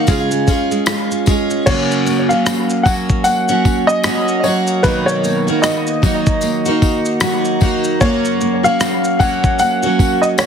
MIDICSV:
0, 0, Header, 1, 5, 480
1, 0, Start_track
1, 0, Key_signature, 6, "major"
1, 0, Tempo, 792602
1, 1011, Time_signature, 4, 2, 24, 8
1, 6335, End_track
2, 0, Start_track
2, 0, Title_t, "Upright piano"
2, 0, Program_c, 0, 0
2, 0, Note_on_c, 0, 77, 79
2, 742, Note_off_c, 0, 77, 0
2, 1005, Note_on_c, 0, 73, 88
2, 1369, Note_off_c, 0, 73, 0
2, 1386, Note_on_c, 0, 77, 81
2, 1716, Note_on_c, 0, 78, 80
2, 1738, Note_off_c, 0, 77, 0
2, 1772, Note_off_c, 0, 78, 0
2, 1962, Note_on_c, 0, 78, 86
2, 2345, Note_on_c, 0, 75, 99
2, 2363, Note_off_c, 0, 78, 0
2, 2687, Note_on_c, 0, 73, 74
2, 2698, Note_off_c, 0, 75, 0
2, 2741, Note_off_c, 0, 73, 0
2, 2925, Note_on_c, 0, 71, 85
2, 3063, Note_off_c, 0, 71, 0
2, 3065, Note_on_c, 0, 73, 89
2, 3403, Note_on_c, 0, 75, 73
2, 3417, Note_off_c, 0, 73, 0
2, 4344, Note_off_c, 0, 75, 0
2, 4849, Note_on_c, 0, 73, 82
2, 5234, Note_on_c, 0, 77, 99
2, 5246, Note_off_c, 0, 73, 0
2, 5568, Note_on_c, 0, 78, 86
2, 5581, Note_off_c, 0, 77, 0
2, 5801, Note_off_c, 0, 78, 0
2, 5810, Note_on_c, 0, 78, 92
2, 6187, Note_on_c, 0, 75, 79
2, 6206, Note_off_c, 0, 78, 0
2, 6217, Note_off_c, 0, 75, 0
2, 6288, Note_on_c, 0, 73, 75
2, 6335, Note_off_c, 0, 73, 0
2, 6335, End_track
3, 0, Start_track
3, 0, Title_t, "Nylon-string guitar"
3, 0, Program_c, 1, 24
3, 0, Note_on_c, 1, 51, 84
3, 0, Note_on_c, 1, 63, 56
3, 0, Note_on_c, 1, 66, 58
3, 46, Note_on_c, 1, 56, 80
3, 106, Note_off_c, 1, 63, 0
3, 107, Note_off_c, 1, 51, 0
3, 107, Note_off_c, 1, 66, 0
3, 183, Note_off_c, 1, 56, 0
3, 190, Note_on_c, 1, 56, 52
3, 287, Note_on_c, 1, 61, 50
3, 424, Note_off_c, 1, 56, 0
3, 431, Note_on_c, 1, 56, 54
3, 527, Note_on_c, 1, 65, 58
3, 671, Note_off_c, 1, 61, 0
3, 674, Note_on_c, 1, 61, 53
3, 762, Note_off_c, 1, 56, 0
3, 770, Note_on_c, 1, 56, 53
3, 910, Note_off_c, 1, 61, 0
3, 913, Note_on_c, 1, 61, 45
3, 1005, Note_off_c, 1, 56, 0
3, 1007, Note_on_c, 1, 58, 80
3, 1067, Note_off_c, 1, 65, 0
3, 1246, Note_off_c, 1, 58, 0
3, 1248, Note_on_c, 1, 58, 52
3, 1491, Note_on_c, 1, 66, 53
3, 1728, Note_off_c, 1, 61, 0
3, 1731, Note_on_c, 1, 61, 54
3, 1968, Note_off_c, 1, 58, 0
3, 1971, Note_on_c, 1, 58, 57
3, 2206, Note_off_c, 1, 61, 0
3, 2213, Note_on_c, 1, 61, 53
3, 2450, Note_off_c, 1, 66, 0
3, 2453, Note_on_c, 1, 66, 62
3, 2684, Note_off_c, 1, 61, 0
3, 2692, Note_on_c, 1, 61, 47
3, 2934, Note_on_c, 1, 51, 85
3, 2990, Note_off_c, 1, 61, 0
3, 3173, Note_off_c, 1, 58, 0
3, 3176, Note_on_c, 1, 58, 54
3, 3412, Note_off_c, 1, 66, 0
3, 3415, Note_on_c, 1, 66, 64
3, 3653, Note_on_c, 1, 63, 54
3, 3891, Note_off_c, 1, 58, 0
3, 3894, Note_on_c, 1, 58, 58
3, 4124, Note_off_c, 1, 63, 0
3, 4131, Note_on_c, 1, 63, 52
3, 4373, Note_off_c, 1, 66, 0
3, 4376, Note_on_c, 1, 66, 63
3, 4607, Note_off_c, 1, 63, 0
3, 4614, Note_on_c, 1, 63, 53
3, 4851, Note_off_c, 1, 58, 0
3, 4854, Note_off_c, 1, 51, 0
3, 4854, Note_on_c, 1, 58, 75
3, 4911, Note_off_c, 1, 63, 0
3, 5093, Note_off_c, 1, 58, 0
3, 5096, Note_on_c, 1, 58, 58
3, 5329, Note_off_c, 1, 66, 0
3, 5332, Note_on_c, 1, 66, 63
3, 5574, Note_on_c, 1, 61, 60
3, 5811, Note_off_c, 1, 58, 0
3, 5814, Note_on_c, 1, 58, 61
3, 6046, Note_off_c, 1, 61, 0
3, 6053, Note_on_c, 1, 61, 52
3, 6290, Note_off_c, 1, 66, 0
3, 6292, Note_on_c, 1, 66, 63
3, 6335, Note_off_c, 1, 58, 0
3, 6335, Note_off_c, 1, 61, 0
3, 6335, Note_off_c, 1, 66, 0
3, 6335, End_track
4, 0, Start_track
4, 0, Title_t, "Steel-string acoustic guitar"
4, 0, Program_c, 2, 25
4, 41, Note_on_c, 2, 49, 58
4, 46, Note_on_c, 2, 56, 64
4, 51, Note_on_c, 2, 61, 67
4, 54, Note_on_c, 2, 65, 64
4, 55, Note_on_c, 2, 68, 82
4, 276, Note_off_c, 2, 56, 0
4, 284, Note_on_c, 2, 56, 44
4, 286, Note_off_c, 2, 49, 0
4, 286, Note_off_c, 2, 61, 0
4, 289, Note_off_c, 2, 65, 0
4, 293, Note_off_c, 2, 68, 0
4, 293, Note_on_c, 2, 61, 53
4, 297, Note_on_c, 2, 65, 50
4, 304, Note_on_c, 2, 68, 55
4, 519, Note_off_c, 2, 56, 0
4, 526, Note_off_c, 2, 61, 0
4, 526, Note_on_c, 2, 56, 54
4, 533, Note_on_c, 2, 61, 58
4, 534, Note_off_c, 2, 65, 0
4, 538, Note_off_c, 2, 68, 0
4, 540, Note_on_c, 2, 65, 68
4, 544, Note_on_c, 2, 68, 67
4, 756, Note_off_c, 2, 56, 0
4, 763, Note_off_c, 2, 61, 0
4, 763, Note_on_c, 2, 56, 63
4, 770, Note_off_c, 2, 65, 0
4, 770, Note_on_c, 2, 61, 67
4, 774, Note_off_c, 2, 68, 0
4, 777, Note_on_c, 2, 65, 69
4, 781, Note_on_c, 2, 68, 61
4, 1005, Note_on_c, 2, 42, 71
4, 1007, Note_off_c, 2, 56, 0
4, 1008, Note_off_c, 2, 61, 0
4, 1009, Note_on_c, 2, 49, 70
4, 1010, Note_on_c, 2, 54, 73
4, 1013, Note_off_c, 2, 65, 0
4, 1013, Note_on_c, 2, 58, 78
4, 1015, Note_off_c, 2, 68, 0
4, 1016, Note_on_c, 2, 61, 73
4, 1018, Note_on_c, 2, 66, 78
4, 1380, Note_off_c, 2, 66, 0
4, 1387, Note_off_c, 2, 61, 0
4, 1387, Note_on_c, 2, 66, 48
4, 1393, Note_off_c, 2, 42, 0
4, 1393, Note_off_c, 2, 58, 0
4, 1395, Note_off_c, 2, 49, 0
4, 1395, Note_off_c, 2, 54, 0
4, 1395, Note_on_c, 2, 61, 46
4, 1400, Note_on_c, 2, 58, 43
4, 1406, Note_on_c, 2, 54, 43
4, 1718, Note_off_c, 2, 54, 0
4, 1725, Note_off_c, 2, 58, 0
4, 1725, Note_on_c, 2, 54, 65
4, 1728, Note_off_c, 2, 66, 0
4, 1730, Note_off_c, 2, 61, 0
4, 1732, Note_on_c, 2, 58, 62
4, 1738, Note_on_c, 2, 61, 63
4, 1742, Note_on_c, 2, 66, 63
4, 2104, Note_off_c, 2, 66, 0
4, 2109, Note_off_c, 2, 61, 0
4, 2111, Note_on_c, 2, 66, 54
4, 2113, Note_off_c, 2, 54, 0
4, 2117, Note_off_c, 2, 58, 0
4, 2117, Note_on_c, 2, 61, 48
4, 2123, Note_on_c, 2, 58, 43
4, 2129, Note_on_c, 2, 54, 39
4, 2435, Note_off_c, 2, 54, 0
4, 2443, Note_off_c, 2, 58, 0
4, 2443, Note_on_c, 2, 54, 46
4, 2449, Note_off_c, 2, 61, 0
4, 2450, Note_on_c, 2, 58, 53
4, 2451, Note_off_c, 2, 66, 0
4, 2456, Note_on_c, 2, 61, 60
4, 2462, Note_on_c, 2, 66, 60
4, 2677, Note_off_c, 2, 54, 0
4, 2683, Note_off_c, 2, 58, 0
4, 2684, Note_on_c, 2, 54, 55
4, 2689, Note_off_c, 2, 61, 0
4, 2690, Note_on_c, 2, 58, 59
4, 2696, Note_off_c, 2, 66, 0
4, 2696, Note_on_c, 2, 61, 59
4, 2703, Note_on_c, 2, 66, 71
4, 2923, Note_off_c, 2, 54, 0
4, 2923, Note_off_c, 2, 58, 0
4, 2926, Note_on_c, 2, 47, 73
4, 2930, Note_on_c, 2, 54, 79
4, 2930, Note_on_c, 2, 58, 81
4, 2932, Note_off_c, 2, 66, 0
4, 2933, Note_off_c, 2, 61, 0
4, 2935, Note_on_c, 2, 63, 76
4, 2939, Note_on_c, 2, 66, 85
4, 3304, Note_off_c, 2, 66, 0
4, 3312, Note_on_c, 2, 66, 57
4, 3314, Note_off_c, 2, 47, 0
4, 3314, Note_off_c, 2, 63, 0
4, 3316, Note_off_c, 2, 54, 0
4, 3316, Note_off_c, 2, 58, 0
4, 3322, Note_on_c, 2, 63, 43
4, 3329, Note_on_c, 2, 58, 43
4, 3644, Note_off_c, 2, 58, 0
4, 3645, Note_on_c, 2, 54, 65
4, 3650, Note_off_c, 2, 63, 0
4, 3651, Note_off_c, 2, 66, 0
4, 3651, Note_on_c, 2, 58, 63
4, 3658, Note_on_c, 2, 63, 67
4, 3662, Note_on_c, 2, 66, 62
4, 4025, Note_off_c, 2, 66, 0
4, 4032, Note_on_c, 2, 66, 62
4, 4033, Note_off_c, 2, 54, 0
4, 4036, Note_off_c, 2, 58, 0
4, 4037, Note_off_c, 2, 63, 0
4, 4044, Note_on_c, 2, 63, 51
4, 4051, Note_on_c, 2, 58, 46
4, 4364, Note_off_c, 2, 58, 0
4, 4367, Note_on_c, 2, 54, 64
4, 4371, Note_off_c, 2, 66, 0
4, 4371, Note_on_c, 2, 58, 63
4, 4372, Note_off_c, 2, 63, 0
4, 4379, Note_on_c, 2, 63, 64
4, 4383, Note_on_c, 2, 66, 65
4, 4596, Note_off_c, 2, 54, 0
4, 4603, Note_on_c, 2, 54, 68
4, 4604, Note_off_c, 2, 58, 0
4, 4611, Note_off_c, 2, 63, 0
4, 4611, Note_on_c, 2, 58, 69
4, 4615, Note_off_c, 2, 66, 0
4, 4619, Note_on_c, 2, 63, 72
4, 4623, Note_on_c, 2, 66, 74
4, 4844, Note_off_c, 2, 54, 0
4, 4846, Note_on_c, 2, 42, 75
4, 4849, Note_off_c, 2, 58, 0
4, 4849, Note_on_c, 2, 49, 77
4, 4852, Note_on_c, 2, 54, 87
4, 4853, Note_off_c, 2, 66, 0
4, 4854, Note_off_c, 2, 63, 0
4, 4856, Note_on_c, 2, 58, 92
4, 4856, Note_on_c, 2, 61, 77
4, 4860, Note_on_c, 2, 66, 92
4, 5222, Note_off_c, 2, 66, 0
4, 5229, Note_off_c, 2, 61, 0
4, 5229, Note_on_c, 2, 66, 57
4, 5233, Note_off_c, 2, 42, 0
4, 5235, Note_off_c, 2, 49, 0
4, 5235, Note_off_c, 2, 58, 0
4, 5236, Note_off_c, 2, 54, 0
4, 5236, Note_on_c, 2, 61, 46
4, 5243, Note_on_c, 2, 58, 50
4, 5248, Note_on_c, 2, 54, 42
4, 5559, Note_off_c, 2, 54, 0
4, 5566, Note_on_c, 2, 54, 61
4, 5567, Note_off_c, 2, 58, 0
4, 5568, Note_off_c, 2, 66, 0
4, 5572, Note_off_c, 2, 61, 0
4, 5574, Note_on_c, 2, 58, 62
4, 5579, Note_on_c, 2, 61, 66
4, 5584, Note_on_c, 2, 66, 72
4, 5945, Note_off_c, 2, 66, 0
4, 5950, Note_off_c, 2, 61, 0
4, 5952, Note_on_c, 2, 66, 53
4, 5953, Note_off_c, 2, 54, 0
4, 5956, Note_off_c, 2, 58, 0
4, 5957, Note_on_c, 2, 61, 44
4, 5965, Note_on_c, 2, 58, 43
4, 5971, Note_on_c, 2, 54, 43
4, 6276, Note_off_c, 2, 54, 0
4, 6283, Note_on_c, 2, 54, 55
4, 6285, Note_off_c, 2, 58, 0
4, 6289, Note_off_c, 2, 66, 0
4, 6292, Note_off_c, 2, 61, 0
4, 6292, Note_on_c, 2, 58, 58
4, 6298, Note_on_c, 2, 61, 54
4, 6302, Note_on_c, 2, 66, 61
4, 6335, Note_off_c, 2, 54, 0
4, 6335, Note_off_c, 2, 58, 0
4, 6335, Note_off_c, 2, 61, 0
4, 6335, Note_off_c, 2, 66, 0
4, 6335, End_track
5, 0, Start_track
5, 0, Title_t, "Drums"
5, 41, Note_on_c, 9, 54, 44
5, 46, Note_on_c, 9, 82, 62
5, 49, Note_on_c, 9, 36, 75
5, 102, Note_off_c, 9, 54, 0
5, 106, Note_off_c, 9, 82, 0
5, 110, Note_off_c, 9, 36, 0
5, 189, Note_on_c, 9, 82, 53
5, 250, Note_off_c, 9, 82, 0
5, 287, Note_on_c, 9, 82, 44
5, 289, Note_on_c, 9, 36, 72
5, 292, Note_on_c, 9, 54, 42
5, 347, Note_off_c, 9, 82, 0
5, 349, Note_off_c, 9, 36, 0
5, 352, Note_off_c, 9, 54, 0
5, 432, Note_on_c, 9, 82, 45
5, 493, Note_off_c, 9, 82, 0
5, 521, Note_on_c, 9, 54, 80
5, 526, Note_on_c, 9, 37, 92
5, 529, Note_on_c, 9, 82, 51
5, 581, Note_off_c, 9, 54, 0
5, 587, Note_off_c, 9, 37, 0
5, 589, Note_off_c, 9, 82, 0
5, 674, Note_on_c, 9, 82, 43
5, 735, Note_off_c, 9, 82, 0
5, 764, Note_on_c, 9, 54, 47
5, 768, Note_on_c, 9, 82, 48
5, 771, Note_on_c, 9, 36, 73
5, 825, Note_off_c, 9, 54, 0
5, 829, Note_off_c, 9, 82, 0
5, 832, Note_off_c, 9, 36, 0
5, 911, Note_on_c, 9, 82, 47
5, 971, Note_off_c, 9, 82, 0
5, 1010, Note_on_c, 9, 36, 92
5, 1010, Note_on_c, 9, 49, 77
5, 1010, Note_on_c, 9, 82, 58
5, 1070, Note_off_c, 9, 36, 0
5, 1071, Note_off_c, 9, 49, 0
5, 1071, Note_off_c, 9, 82, 0
5, 1158, Note_on_c, 9, 82, 43
5, 1218, Note_off_c, 9, 82, 0
5, 1250, Note_on_c, 9, 54, 31
5, 1253, Note_on_c, 9, 82, 53
5, 1311, Note_off_c, 9, 54, 0
5, 1313, Note_off_c, 9, 82, 0
5, 1396, Note_on_c, 9, 82, 37
5, 1456, Note_off_c, 9, 82, 0
5, 1490, Note_on_c, 9, 82, 62
5, 1493, Note_on_c, 9, 37, 98
5, 1493, Note_on_c, 9, 54, 80
5, 1551, Note_off_c, 9, 82, 0
5, 1553, Note_off_c, 9, 37, 0
5, 1553, Note_off_c, 9, 54, 0
5, 1633, Note_on_c, 9, 82, 41
5, 1694, Note_off_c, 9, 82, 0
5, 1730, Note_on_c, 9, 36, 74
5, 1734, Note_on_c, 9, 54, 48
5, 1791, Note_off_c, 9, 36, 0
5, 1794, Note_off_c, 9, 54, 0
5, 1875, Note_on_c, 9, 36, 97
5, 1875, Note_on_c, 9, 82, 50
5, 1935, Note_off_c, 9, 82, 0
5, 1936, Note_off_c, 9, 36, 0
5, 1963, Note_on_c, 9, 54, 49
5, 1966, Note_on_c, 9, 82, 66
5, 2023, Note_off_c, 9, 54, 0
5, 2026, Note_off_c, 9, 82, 0
5, 2111, Note_on_c, 9, 82, 55
5, 2171, Note_off_c, 9, 82, 0
5, 2211, Note_on_c, 9, 36, 73
5, 2212, Note_on_c, 9, 54, 44
5, 2272, Note_off_c, 9, 36, 0
5, 2273, Note_off_c, 9, 54, 0
5, 2356, Note_on_c, 9, 82, 49
5, 2416, Note_off_c, 9, 82, 0
5, 2443, Note_on_c, 9, 54, 76
5, 2448, Note_on_c, 9, 37, 84
5, 2451, Note_on_c, 9, 82, 57
5, 2504, Note_off_c, 9, 54, 0
5, 2509, Note_off_c, 9, 37, 0
5, 2511, Note_off_c, 9, 82, 0
5, 2593, Note_on_c, 9, 82, 41
5, 2653, Note_off_c, 9, 82, 0
5, 2687, Note_on_c, 9, 54, 49
5, 2748, Note_off_c, 9, 54, 0
5, 2829, Note_on_c, 9, 82, 54
5, 2890, Note_off_c, 9, 82, 0
5, 2930, Note_on_c, 9, 82, 60
5, 2932, Note_on_c, 9, 36, 86
5, 2937, Note_on_c, 9, 54, 30
5, 2991, Note_off_c, 9, 82, 0
5, 2992, Note_off_c, 9, 36, 0
5, 2998, Note_off_c, 9, 54, 0
5, 3079, Note_on_c, 9, 82, 42
5, 3139, Note_off_c, 9, 82, 0
5, 3174, Note_on_c, 9, 82, 52
5, 3175, Note_on_c, 9, 54, 32
5, 3234, Note_off_c, 9, 82, 0
5, 3236, Note_off_c, 9, 54, 0
5, 3317, Note_on_c, 9, 82, 40
5, 3378, Note_off_c, 9, 82, 0
5, 3411, Note_on_c, 9, 82, 67
5, 3414, Note_on_c, 9, 37, 101
5, 3415, Note_on_c, 9, 54, 73
5, 3471, Note_off_c, 9, 82, 0
5, 3474, Note_off_c, 9, 37, 0
5, 3475, Note_off_c, 9, 54, 0
5, 3554, Note_on_c, 9, 82, 39
5, 3615, Note_off_c, 9, 82, 0
5, 3652, Note_on_c, 9, 36, 79
5, 3655, Note_on_c, 9, 54, 48
5, 3712, Note_off_c, 9, 36, 0
5, 3715, Note_off_c, 9, 54, 0
5, 3793, Note_on_c, 9, 82, 48
5, 3796, Note_on_c, 9, 36, 93
5, 3853, Note_off_c, 9, 82, 0
5, 3856, Note_off_c, 9, 36, 0
5, 3883, Note_on_c, 9, 54, 43
5, 3884, Note_on_c, 9, 82, 65
5, 3943, Note_off_c, 9, 54, 0
5, 3945, Note_off_c, 9, 82, 0
5, 4030, Note_on_c, 9, 82, 52
5, 4091, Note_off_c, 9, 82, 0
5, 4131, Note_on_c, 9, 36, 68
5, 4131, Note_on_c, 9, 54, 46
5, 4191, Note_off_c, 9, 36, 0
5, 4192, Note_off_c, 9, 54, 0
5, 4271, Note_on_c, 9, 82, 48
5, 4332, Note_off_c, 9, 82, 0
5, 4362, Note_on_c, 9, 54, 84
5, 4366, Note_on_c, 9, 37, 99
5, 4369, Note_on_c, 9, 82, 59
5, 4423, Note_off_c, 9, 54, 0
5, 4427, Note_off_c, 9, 37, 0
5, 4429, Note_off_c, 9, 82, 0
5, 4510, Note_on_c, 9, 82, 43
5, 4570, Note_off_c, 9, 82, 0
5, 4607, Note_on_c, 9, 54, 46
5, 4612, Note_on_c, 9, 36, 80
5, 4668, Note_off_c, 9, 54, 0
5, 4673, Note_off_c, 9, 36, 0
5, 4748, Note_on_c, 9, 82, 54
5, 4809, Note_off_c, 9, 82, 0
5, 4850, Note_on_c, 9, 82, 63
5, 4851, Note_on_c, 9, 36, 94
5, 4911, Note_off_c, 9, 82, 0
5, 4912, Note_off_c, 9, 36, 0
5, 4995, Note_on_c, 9, 82, 45
5, 5056, Note_off_c, 9, 82, 0
5, 5093, Note_on_c, 9, 82, 51
5, 5153, Note_off_c, 9, 82, 0
5, 5237, Note_on_c, 9, 82, 46
5, 5298, Note_off_c, 9, 82, 0
5, 5331, Note_on_c, 9, 82, 65
5, 5334, Note_on_c, 9, 37, 97
5, 5334, Note_on_c, 9, 54, 76
5, 5392, Note_off_c, 9, 82, 0
5, 5394, Note_off_c, 9, 37, 0
5, 5395, Note_off_c, 9, 54, 0
5, 5476, Note_on_c, 9, 82, 44
5, 5537, Note_off_c, 9, 82, 0
5, 5571, Note_on_c, 9, 36, 78
5, 5575, Note_on_c, 9, 54, 49
5, 5632, Note_off_c, 9, 36, 0
5, 5636, Note_off_c, 9, 54, 0
5, 5716, Note_on_c, 9, 36, 100
5, 5716, Note_on_c, 9, 82, 48
5, 5776, Note_off_c, 9, 82, 0
5, 5777, Note_off_c, 9, 36, 0
5, 5807, Note_on_c, 9, 82, 69
5, 5808, Note_on_c, 9, 54, 48
5, 5867, Note_off_c, 9, 82, 0
5, 5868, Note_off_c, 9, 54, 0
5, 5952, Note_on_c, 9, 82, 58
5, 6013, Note_off_c, 9, 82, 0
5, 6052, Note_on_c, 9, 36, 76
5, 6056, Note_on_c, 9, 54, 46
5, 6112, Note_off_c, 9, 36, 0
5, 6116, Note_off_c, 9, 54, 0
5, 6195, Note_on_c, 9, 82, 52
5, 6255, Note_off_c, 9, 82, 0
5, 6285, Note_on_c, 9, 54, 72
5, 6291, Note_on_c, 9, 37, 83
5, 6293, Note_on_c, 9, 82, 60
5, 6335, Note_off_c, 9, 37, 0
5, 6335, Note_off_c, 9, 54, 0
5, 6335, Note_off_c, 9, 82, 0
5, 6335, End_track
0, 0, End_of_file